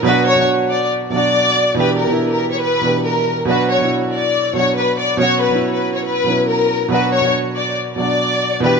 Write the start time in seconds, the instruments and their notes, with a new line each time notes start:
0.03 grand piano B2 F#3 D4, violin section B4
0.08 grand piano F#4
0.27 violin section C#5
0.35 grand piano B2 F#3 D4
0.41 grand piano F#4
0.70 violin section D5
1.10 grand piano B2 F#3 D4, violin section D5
1.16 grand piano F#4
1.74 grand piano B2 E3 D4, violin section B4
1.80 grand piano G4
1.99 violin section A#4
2.06 grand piano B2 E3 D4
2.12 grand piano E4
2.31 violin section A#4
2.52 violin section C#5
2.63 violin section B4
2.81 grand piano B2 E3 D4
2.87 grand piano G4
3.06 violin section A#4
3.45 grand piano B2 F#3 D4, violin section B4
3.51 grand piano F#4
3.70 violin section C#5
3.78 grand piano B2 F#3 D4
3.84 grand piano E4
4.13 violin section D5
4.53 grand piano B2 F#3 D4, violin section C#5
4.59 grand piano F#4
4.77 violin section B4
4.99 violin section D5
5.17 grand piano B2 F#3 C#4, violin section C#5
5.23 grand piano F#4
5.42 violin section B4
5.49 grand piano B2 F#3 C#4
5.55 grand piano E4
5.73 violin section B4
5.95 violin section C#5
6.05 violin section B4
6.24 grand piano B2 F#3 C#4
6.30 grand piano E4
6.48 violin section A#4
6.88 grand piano B2 F#3 D4, violin section B4
6.94 grand piano F#4
7.13 violin section C#5
7.21 grand piano B2 F#3 D4
7.27 grand piano F#4
7.55 violin section D5
7.96 grand piano B2 F#3 D4, violin section D5
8.02 grand piano F#4
8.60 grand piano B2 E3 D4, violin section B4
8.66 grand piano G4